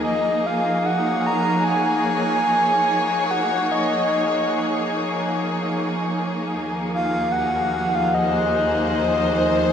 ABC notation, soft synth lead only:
X:1
M:4/4
L:1/16
Q:1/4=74
K:Ebdor
V:1 name="Soft synth lead"
e2 f2 g2 b2 a8 | g2 e6 z8 | z2 f2 g3 f e8 |]